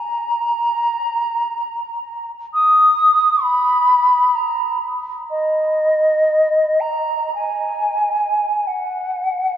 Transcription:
flute
Already playing: A#5
2.53 D#6
3.43 B5
4.35 A#5
5.30 D#5
6.80 A#5
7.35 G#5
8.67 F#5

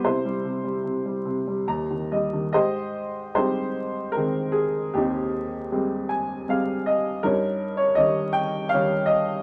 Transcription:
upright piano
0.04 C3 E4 C5
0.25 G3
0.45 C3
0.64 G3
0.84 C3
1.06 G3
1.25 C3
1.47 G3
1.67 D#2 A#5
1.90 D#3
2.12 G3 D#5
2.33 D#3
2.53 G#2 G4 C5 D#5
3.35 G3 G#3 C4 D#4 G4 C5
4.12 A#4
4.16 D#3 G#3 C4
4.52 G#4
4.94 D#2 C4 D#4 G4
5.72 G3 G#3 C4
6.09 G#5
6.48 G3 G#3 C4 F5
6.86 D#5
7.23 G2 C#4 D#4 A#4
7.77 C#5
7.95 D#3 G3 C#4 D#5
8.33 G5
8.69 G3 F5
8.74 D#3 C#4
9.06 D#5

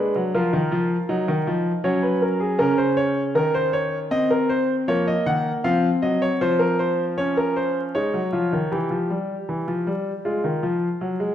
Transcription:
grand piano
Already playing: G#3 D4 B4
0.16 F#3
0.34 F3 F4 A#4
0.53 D#3
0.72 F3
1.09 F#3 D#4
1.28 D#3
1.47 F3
1.84 F#3 C#4 C#5
2.03 B4
2.22 A#4
2.40 G#4
2.59 C#3 C#4 A#4
2.78 C5
2.97 C#5
3.35 D#3 A#4
3.54 C5
3.73 C#5
4.11 C4 D#5
4.30 A#4
4.49 C5
4.88 F3 A#3 C#5
5.08 D#5
5.26 D#3 F#5
5.64 F3 C4 F5
6.02 F#3 D#5
6.22 C#5
6.41 F3 C5
6.59 A#4
6.79 C5
7.18 C#4 C#5
7.37 A#4
7.56 C5
7.95 G#3 D#4 C#5
8.14 F#3
8.32 F3 F4
8.53 D#3
8.72 E3 G4
8.90 F3
9.10 G3
9.49 E3
9.67 F3
9.87 G3
10.25 G#3 F4
10.44 D#3
10.63 F3
11.01 F#3
11.20 G#3

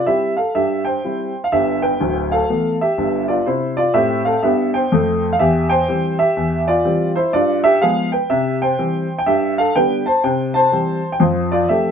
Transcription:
upright piano
0.06 G3 C4 E4 G4 E5
0.37 A4 F5
0.55 G2 G4 E5
0.85 C5 G5
1.05 G3 C4 E4
1.44 F5
1.52 G1 G2 G4 E5
1.82 B4 G5
2.00 D1 D2
2.32 A4 F5
2.50 E3 A3 B3
2.81 G4 E5
2.98 G1 G2
3.28 F4 D5
3.46 C3 E4 C5
3.77 F4 D5
3.94 A2 C4 G4 E5
4.25 A4 F5
4.43 G2 B3 G4 E5
4.74 C5 G5
4.92 F2 A3
5.33 F5
5.39 E2 G4 E5
5.69 C5 G5
5.88 E3 G3 C4
6.19 G4 E5
6.37 E2
6.68 F4 D5
6.84 E3 G3 C4
7.16 E4 C5
7.33 G2 F4 D5
7.64 G4 E5
7.82 F3 G#3 B3 G#4 F5
8.12 B4 G5
8.30 C3 G4 E5
8.62 C5 G5
8.79 E3 G3 C4
9.18 G5
9.26 G2 G4 E5
9.58 A4 F5
9.76 D3 G3 B3 B4 G5
10.06 C5 A5
10.24 C3 C5 G5
10.54 C5 A5
10.72 E3 G3 C4
11.12 G5
11.19 F2 F4 C5
11.52 F4 D5
11.69 F3 A3 C4 G4 E5

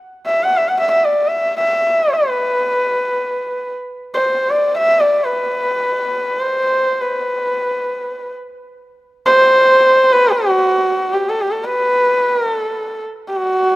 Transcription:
sarangi
0.26 E5
0.43 F#5
0.57 E5
0.68 F#5
0.80 E5
0.91 E5
1.05 D5
1.27 E5
1.57 E5
2.13 B4
4.14 C5
4.50 D5
4.78 E5
5.00 D5
5.25 B4
6.40 C5
7.01 B4
9.26 C5
10.12 B4
10.32 F#4
11.13 G4
11.29 A4
11.41 G4
11.51 A4
11.65 B4
12.35 A#4
12.51 A4
13.28 G4
13.36 F#4

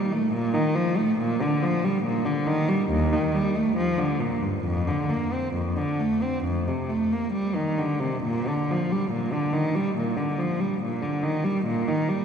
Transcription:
cello
Already playing: G3
0.13 A3
0.33 A#2
0.54 D#3
0.75 F3
0.98 A3
1.18 A#2
1.42 D3
1.63 F3
1.84 G3
2.04 A#2
2.25 D3
2.47 D#3
2.69 G3
2.91 D#2
3.13 D#3
3.35 G3
3.56 A3
3.77 F3
3.98 D3
4.20 A#2
4.42 G2
4.65 F2
4.87 D3
5.10 A#3
5.33 C4
5.54 F2
5.77 D3
6.00 A3
6.22 C4
6.44 F2
6.68 C3
6.89 A3
7.12 A#3
7.33 G3
7.56 D#3
7.78 D3
8.00 C3
8.23 A#2
8.48 D3
8.71 F3
8.92 G3
9.12 A#2
9.33 D3
9.53 D#3
9.75 G3
9.96 A#2
10.17 D3
10.39 F3
10.60 G3
10.82 A#2
11.02 D3
11.23 D#3
11.44 G3
11.66 A#2
11.88 D#3
12.09 G3

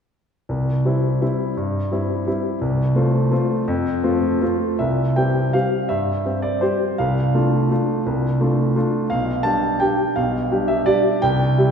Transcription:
grand piano
0.49 C2
0.85 G3 C4 E4
1.21 G3 C4 E4
1.57 G2
1.91 G3 C4 E4
2.27 G3 C4 E4
2.61 C2
2.95 A3 C4 F4
3.31 A3 C4 F4
3.68 F2
4.03 A3 C4 F4
4.42 A3 C4 F4
4.79 C2 E5
5.16 G3 C4 G4 G5
5.53 G3 C4 G4 F5
5.89 G2 E5
6.25 G3 C4 G4
6.42 D5
6.61 G3 C4 G4 C5
6.98 C2 F5
7.35 A3 D4 F4
7.71 A3 D4 F4
8.06 C2
8.41 A3 D4 F4
8.76 A3 D4 F4
9.10 B1 F5
9.43 G3 D4 G4 A5
9.80 G3 D4 G4 G5
10.16 B1 F5
10.51 G3 D4 G4
10.68 E5
10.86 G3 D4 G4 D5
11.22 C2 G5
11.58 G3 E4 G4

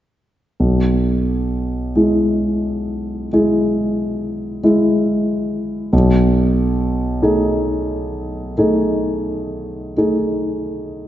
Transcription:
grand piano
0.60 B1
1.96 G#3 E4 G#4
3.33 G#3 E4 G#4
4.64 G#3 E4 G#4
5.93 B1
7.22 A3 D#4 G#4
8.58 A3 D#4 G#4
9.97 A3 D#4 G#4

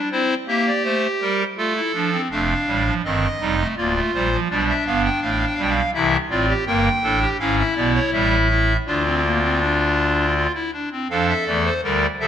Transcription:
pipe organ
0.12 C4 E4 C5
0.48 A#3 G4 E5
0.67 D5
0.84 A3 C5
1.21 G3 A#4
1.57 A3 F4 A4
1.76 E4
1.94 F3 D4
2.12 C4
2.31 F1 F2 A3 D4 F5
2.67 A1 A2 G3
2.86 F3
3.04 G1 G2 D#3 C4 D#5
3.40 F1 F2 G3 D#4
3.59 A3
3.77 D1 D2 A#3 F4 D5
3.95 A3
4.14 A#1 A#2 G3 C5
4.32 F3
4.50 B1 B2 G3 D4 D5
4.69 E5
4.87 G1 G2 B3 F5
5.04 G5
5.22 A1 A2 A3 F5
5.30 G5
5.38 F5
5.46 G5
5.54 G3 F5
5.58 B1 B2 G5
5.69 F5
5.94 C2 C3 E3 E4 E5
6.30 A1 A2 C4 F4 D5
6.48 G4
6.66 G1 G2 A#3 A#4 G5
7.03 A1 A2 D4 A4
7.21 G4
7.40 G#1 G#2 C#4 E4 F5
7.58 E5
7.76 B1 B2 B3 D5
7.94 C#5
8.12 A1 A2 G3 E5
8.50 E4
8.87 D2 D3 D4 F4 D5
9.05 C4
9.24 A#3
9.43 C4
9.61 D4
10.36 F4
10.54 E4
10.73 D4
10.92 C4
11.10 F2 F3 D4 A4 F5
11.29 E5
11.47 E2 E3 A3 D5
11.65 C5
11.84 D2 D3 G3 A#4 D5
12.20 C2 C3 F3 A4 E5

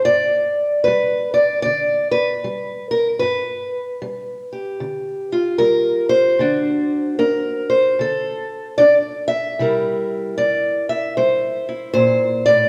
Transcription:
steel-string acoustic guitar
0.05 G2 D5
0.84 G3 B4
1.34 D5
1.62 D3 D5
2.11 B4
2.44 G3
2.91 A#4
3.19 G2 B4
4.02 G3
4.53 G4
4.80 D3
5.32 F4
5.58 G3 A#4
6.09 C5
6.39 D3 D4 F#4
7.19 D4 A#4
7.70 C5
7.99 D3 A4
8.78 D4 D5
9.28 E5
9.59 C3 G3 E4 A#4
10.38 G3 D5
10.89 E5
11.17 G3 C5
11.69 E4
11.94 A#2 C5
12.46 A2 D5

